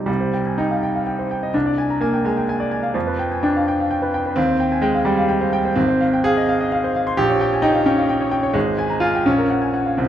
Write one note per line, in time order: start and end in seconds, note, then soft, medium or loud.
0.00 0.07 C2 soft
0.00 0.10 F3 soft
0.00 0.06 G3 soft
0.00 0.10 D#4 soft
0.00 0.10 C5 soft
0.00 0.10 G5 soft
0.00 0.10 C6 medium
0.06 1.50 C2 medium
0.06 0.58 G3 medium
0.21 0.41 C5 soft
0.34 0.54 G5 soft
0.46 0.59 G#5 soft
0.58 1.54 D#4 medium
0.58 0.78 G5 soft
0.71 0.83 F5 soft
0.83 1.02 G5 soft
0.95 1.07 F5 soft
1.07 1.26 G5 soft
1.19 1.38 C5 soft
1.31 1.50 G5 soft
1.43 1.55 D#5 soft
1.54 2.91 C2 medium
1.54 2.01 D4 medium
1.66 1.85 D5 soft
1.78 1.97 G#5 soft
1.90 2.02 A#5 soft
2.01 2.24 A#3 medium
2.01 2.20 G#5 medium
2.14 2.25 G5 soft
2.25 2.95 G#3 medium
2.25 2.43 G#5 soft
2.37 2.48 G5 soft
2.49 2.67 G#5 soft
2.60 2.78 D5 soft
2.71 2.90 G#5 soft
2.83 2.95 F5 soft
2.94 4.33 F2 medium
2.94 3.44 F3 medium
3.07 3.27 B4 soft
3.19 3.39 G5 soft
3.32 3.44 G#5 soft
3.43 4.36 D4 medium
3.43 3.63 G5 soft
3.57 3.68 F5 soft
3.68 3.87 G5 medium
3.80 3.91 F5 soft
3.91 4.09 G5 medium
4.02 4.21 B4 soft
4.14 4.32 G5 medium
4.26 4.37 B4 medium
4.36 5.72 D#2 medium
4.36 4.82 C4 medium
4.49 4.67 C5 soft
4.60 4.78 G5 medium
4.72 4.83 G#5 soft
4.82 5.05 G#3 medium
4.82 5.01 G5 medium
4.95 5.06 F5 medium
5.05 5.76 G3 medium
5.05 5.24 G5 medium
5.17 5.29 F5 soft
5.29 5.47 G5 medium
5.41 5.59 C5 medium
5.53 5.72 G5 medium
5.65 5.77 C5 medium
5.76 7.14 G#1 medium
5.76 6.24 C4 medium
5.89 6.08 C5 medium
6.01 6.20 F5 medium
6.14 6.25 G5 soft
6.24 7.18 G#4 medium
6.24 6.44 F5 medium
6.37 6.48 D#5 medium
6.49 6.67 F5 medium
6.61 6.72 D#5 medium
6.72 6.90 F5 medium
6.84 7.02 C5 medium
6.96 7.14 F5 medium
7.07 7.18 C6 medium
7.17 8.51 A#1 medium
7.17 7.63 G4 loud
7.30 7.48 C#5 medium
7.41 7.59 G5 medium
7.53 7.64 G#5 soft
7.62 7.85 D#4 medium
7.62 7.81 G5 medium
7.74 7.86 F5 soft
7.86 8.55 C#4 medium
7.86 8.04 G5 medium
7.98 8.09 F5 medium
8.09 8.27 G5 medium
8.21 8.39 C#5 medium
8.31 8.50 G5 medium
8.43 8.55 C#5 medium
8.53 9.24 G#1 medium
8.53 9.01 G#3 medium
8.66 8.85 C5 soft
8.78 8.97 G#5 medium
8.90 9.02 A#5 soft
9.00 9.25 F4 medium
9.00 9.21 G#5 medium
9.15 9.26 G5 soft
9.26 9.97 A#1 medium
9.26 9.99 C#4 medium
9.38 9.58 A#4 medium
9.50 9.70 F#5 medium
9.62 9.74 G#5 soft
9.74 9.94 F#5 medium
9.86 9.99 F5 soft
9.97 10.08 C2 medium
9.97 10.08 C4 medium